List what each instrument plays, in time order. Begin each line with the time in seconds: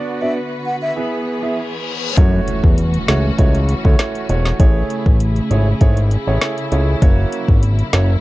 Already playing: string section D3 B3 F#4 B4, grand piano B3 D4 F#4 D5
0.21 grand piano B3 D4 F#4 D5, flute E5
0.66 flute F#5
0.82 flute E5
0.96 string section E3 G#4, grand piano B3 E4 G#4 E5, reverse cymbal
1.42 grand piano B3 E4 G#4 E5
2.17 analog synth bass F#2, string section E3 A3 C#4 F#4, grand piano A3 E4 F#4 C#5, kick, closed hi-hat, impact
2.48 closed hi-hat
2.64 analog synth bass E2, kick
2.78 closed hi-hat
2.94 closed hi-hat
3.08 analog synth bass C#2, grand piano A3 E4 F#4 C#5, snare, closed hi-hat
3.38 analog synth bass C#2, grand piano A3 E4 F#4 C#5, kick, closed hi-hat
3.55 closed hi-hat
3.69 closed hi-hat
3.85 analog synth bass D2, grand piano A3 E4 F#4 C#5, kick
3.99 snare, closed hi-hat
4.15 closed hi-hat
4.29 analog synth bass E1, grand piano A3 E4 F#4 C#5, closed hi-hat
4.45 snare
4.60 analog synth bass A1, string section C#3 E4 G#4, grand piano A3 E4 G#4 C#5, kick, closed hi-hat
4.90 closed hi-hat
5.06 analog synth bass A1, kick
5.20 closed hi-hat
5.36 closed hi-hat
5.50 analog synth bass G#1, grand piano A3 E4 G#4 C#5, closed hi-hat
5.81 analog synth bass G#1, grand piano A3 E4 G#4 C#5, kick, closed hi-hat
5.97 closed hi-hat
6.11 closed hi-hat
6.27 analog synth bass A1, grand piano A3 E4 G#4 C#5
6.41 snare, closed hi-hat
6.58 closed hi-hat
6.72 analog synth bass C#2, grand piano A3 E4 G#4 C#5, closed hi-hat
7.02 analog synth bass F#1, string section F#3 A#3, grand piano A#3 E4 F#4 C#5, kick, closed hi-hat
7.32 closed hi-hat
7.48 analog synth bass G#1, kick
7.63 closed hi-hat
7.79 closed hi-hat
7.93 analog synth bass F#1, grand piano A#3 E4 F#4 C#5, snare, closed hi-hat